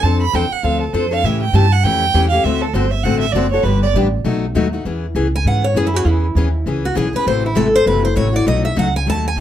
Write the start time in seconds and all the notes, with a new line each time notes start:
0.03 F2 F3 C4 D4 A4 A5
0.22 B5
0.33 E2 F3 C4 D4 A4 G5
0.51 F#5, muted upright bass stroke
0.63 D2 F3 C4 D4 A4 F5
0.81 A4
0.93 F2 F3 C4 D4 A4 C5
1.11 C4 D4 A4 F5
1.23 A2 C#3 E3 A3 C#4 G4 E5
1.42 G5
1.53 G2 C#3 E3 A3 C#4 G4 A5
1.72 F#5
1.83 F2 C#3 E3 A3 C#4 G4 G5
2.14 E2 C#3 E3 A3 C#4 G4
2.30 C#4 G4 F5
2.34 A3
2.43 D2 D3 A3 C4 F#4 A4 E5
2.62 A4
2.73 G1 D3 A3 C4 F#4 A4 C5
2.91 E5
3.03 A1 D3 A3 C4 F#4 A4 F#5
3.20 E5
3.32 F#1 D3 A3 C4 F#4 D5
3.36 A4
3.51 C4 F#4 A4 C#5
3.63 G1 D3 G3 B3 D4 G4 B4
3.83 D5
3.94 A1 D3 G3 B3 D4 G4
4.24 B1 B2 F#3 A3 D#4 F#4
4.55 D#2 B2 F#3 A3 D#4 F#4
4.73 A3 D#4 F#4
4.85 E2 E3 B3 C#4 G#4
5.15 C#2 E3 B3 C#4 G#4
5.36 G#5
5.45 G#2 E3 B3 C#4 G#4 F#5
5.64 C#5
5.74 F#2 E3 B3 C#4 G#4
5.87 E4
5.94 B3 C#4 F#4 G#4
6.05 E2 E3 B3 C#4 E4 G#4
6.35 D#2 E3 B3 C#4 G#4
6.66 C#2 E3 B3 C#4 G#4
6.85 F#4
6.95 B1 E3 B3 C#4 G#4
7.13 B3 C#4 G#4 B4, muted upright bass stroke
7.26 A1 C3 E3 A3 E4 F#4 C5
7.46 E4
7.55 G#1 C3 E3 A3 E4 F#4 A4
7.76 C5
7.86 F#1 C3 E3 A3 E4 F#4 B4
8.05 C5
8.15 A1 C3 E3 A3 E4 F#4 C#5
8.33 A3 E4 F#4 D5
8.46 B1 B2 F#3 A3 D#4 F#4 D#5
8.65 E5
8.76 C#2 B2 F#3 A3 D#4 F#4 F#5
8.96 G#5
9.06 D#2 B2 F#3 A3 D#4 F#4 A5
9.28 G#5
9.36 B1